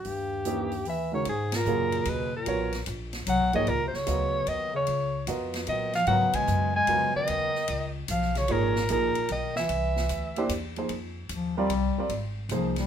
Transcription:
Already playing: G2 G4
0.05 D#2, open hi-hat
0.45 E3 A#3 C#4 D#4 G4, closed hi-hat
0.72 open hi-hat
0.85 E3, open hi-hat
0.89 E5
1.12 C#3 D#3 G#3 C#4 F#4 A#4 C#5
1.25 G#2 G#4, ride
1.52 A#2, snare, ride
1.56 A#4
1.65 F#2 C#3 F#3 A#3 F4 G#4, hi-hat pedal
1.92 ride
2.05 D#2 B2 B4, ride
2.36 A#2 A#4
2.46 B1 F#3 B3 F4 A#4 C#5, ride
2.73 snare, ride
2.86 A#1, hi-hat pedal, ride
3.13 snare, ride
3.27 C2 F#3 F#5, hi-hat pedal, ride
3.41 B1
3.53 G#1 D#3 F3 A#3 D#4 G#4 C#5 D#5, ride
3.67 C#2 A#2 A#4, ride
3.84 C3 C5
3.93 C#3 C#5, muted upright bass stroke, snare
4.07 D2 F#3 B3 F4 A#4 D#5, hi-hat pedal, ride
4.47 D#2 D#3 D#5, ride
4.74 C#3 C#5
4.87 C#2, ride
5.27 F2 B3 F4 F#4 A#4 D#5, hi-hat pedal, ride
5.54 snare, ride
5.67 A#2 D#3 F#3 B3 F4 A#4 D#5, ride
5.93 F3 F5, snare, ride
6.07 G#2 C#3 F#3 B3 F4 A#4 F#5, ride
6.33 G#3 G#5, muted upright bass stroke, kick, ride
6.47 F#2, hi-hat pedal
6.76 G#3 G#5
6.87 F2 C#3 F#3 B3 F4 A#4, ride
7.15 D#3 D#5, muted upright bass stroke
7.28 D#2, ride
7.55 snare
7.68 C#2, ride
8.08 B1 F3 F5, hi-hat pedal, ride
8.22 snare
8.35 C#3 C#5, snare, ride
8.48 G#1 A#2 F3 A#3 D#4 G#4 A#4 C#5, ride
8.76 snare
8.89 A#1 A#2 F3 A#3 D#4 G#4 A#4, hi-hat pedal, ride
9.15 muted upright bass stroke, ride
9.29 B1 D#3 D#5, ride
9.56 E3 E5, snare
9.69 C2, ride
9.96 snare
10.09 D2, hi-hat pedal, ride
10.36 A#3 D4 E4 G4 C5, ride
10.49 E2, hi-hat pedal, ride
10.76 F3 A#3 D#4 G#4 C5, ride
10.89 F2, ride
11.29 D#2 F3, hi-hat pedal, ride
11.57 G3 C4 F4 A#4 D5
11.69 C2, ride
11.97 G3 C4 F4 A#4 D5, muted upright bass stroke
12.09 G#1, ride
12.49 C2 F3 A#3 D#4 G#4 C5, hi-hat pedal, ride
12.76 G3, snare, ride

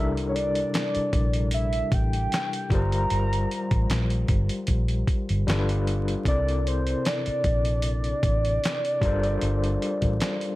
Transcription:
Already playing: C2 C3 G3 D4 A4
0.00 E4 A#4
0.17 closed hi-hat
0.29 C#5
0.35 D5, closed hi-hat
0.55 closed hi-hat
0.74 D5, snare, clap, closed hi-hat
0.95 muted fingered electric bass stroke, closed hi-hat
1.13 A#1, kick, closed hi-hat
1.33 closed hi-hat
1.51 E5, closed hi-hat
1.73 closed hi-hat
1.92 A1 G5, kick, closed hi-hat
2.13 closed hi-hat
2.32 snare, clap, closed hi-hat
2.53 closed hi-hat
2.70 G1 G3 F4 G4 A#4 A#5, kick, closed hi-hat
2.74 C5
2.92 closed hi-hat
3.10 G1, closed hi-hat
3.33 closed hi-hat
3.51 closed hi-hat
3.71 A1, kick, closed hi-hat
3.90 A#1, snare, clap, closed hi-hat
4.10 closed hi-hat
4.28 G1, kick, closed hi-hat
4.49 closed hi-hat
4.67 A#1, kick, closed hi-hat
4.88 closed hi-hat
5.07 kick, closed hi-hat
5.29 G1, closed hi-hat
5.47 G1 G3 D4 F4 A4 B4, snare, clap, closed hi-hat
5.69 closed hi-hat
5.87 closed hi-hat
6.08 closed hi-hat
6.25 C2 C3 C4 E4 A4 A#4 D5, kick, closed hi-hat
6.30 D5
6.49 closed hi-hat
6.67 C5, closed hi-hat
6.87 closed hi-hat
7.05 D5, snare, clap, closed hi-hat
7.26 muted fingered electric bass stroke, closed hi-hat
7.44 A#1, kick, closed hi-hat
7.65 closed hi-hat
7.82 closed hi-hat
8.04 closed hi-hat
8.23 A1, kick, closed hi-hat
8.45 closed hi-hat
8.64 snare, clap, closed hi-hat
8.85 closed hi-hat
9.01 G1 G3 D4 F4 A4, kick, closed hi-hat
9.05 A#4 C5
9.23 closed hi-hat
9.41 G1, closed hi-hat
9.64 closed hi-hat
9.82 closed hi-hat
10.02 A1, kick, closed hi-hat
10.20 snare, clap, closed hi-hat
10.41 closed hi-hat

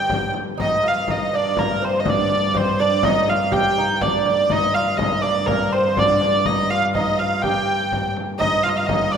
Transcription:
Already playing: G2 G4 G5
0.10 frame drum
0.34 frame drum
0.57 G2 D#4 D#5, frame drum
0.83 F4, frame drum
0.88 F5
1.08 D#4 D#5, frame drum
1.33 D4 D5
1.57 A#3 A#4, frame drum
1.81 C4 C5, frame drum
2.00 D#5
2.06 D4 D5, frame drum
2.30 frame drum
2.54 C4 C5, frame drum
2.78 D4 D5, frame drum
3.03 D#4 D#5, frame drum
3.28 F4 F5, frame drum
3.52 G4 G5, frame drum
3.77 D#4, frame drum
4.01 D4 D5, frame drum
4.25 D4, frame drum
4.50 G2 D#4 D#5, frame drum
4.74 F4 F5, frame drum
4.97 D#4 D#5, frame drum
5.22 D4 D5, frame drum
5.46 A#3 A#4, frame drum
5.72 C4 C5, frame drum
5.97 D4 D5, frame drum
6.21 D4, frame drum
6.45 D#4 D#5, frame drum
6.70 F4 F5, frame drum
6.95 D#4 D#5, frame drum
7.19 F4 F5, frame drum
7.42 G4 G5, frame drum
7.92 frame drum
8.17 frame drum
8.39 G2 D#4 D#5, frame drum
8.63 F4 F5, frame drum
8.69 D#5
8.77 F4 F5
8.86 D#4 D#5, frame drum
9.12 D4 D5, frame drum

